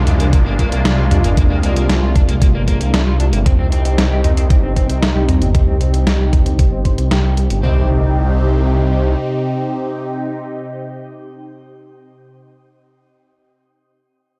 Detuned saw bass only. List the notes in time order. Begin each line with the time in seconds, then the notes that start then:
0.07 C2
0.20 C2
0.33 C2
0.46 G1
0.59 G1
0.72 C2
0.85 C2
0.98 C2
1.11 C2
1.24 G1
1.37 C2
1.50 C2
1.64 C2
1.77 C2
1.90 C2
2.03 C2
2.16 C2
2.29 C2
2.42 C2
2.55 G1
2.68 G1
2.81 C2
2.94 C2
3.07 C2
3.20 C2
3.33 G1
3.46 C2
3.59 C2
3.72 C2
3.85 C2
3.98 C2
4.11 C2
4.24 C2
4.37 C2
4.50 C2
4.63 G1
4.76 G1
4.89 C2
5.02 C2
5.16 C2
5.29 C2
5.42 G1
5.55 C2
5.68 C2
5.81 C2
5.94 C2
6.07 C2
6.20 C2
6.33 C2
6.46 C2
6.59 C2
6.72 G1
6.85 G1
6.98 C2
7.11 C2
7.24 C2
7.37 C2
7.50 G1
7.63 C2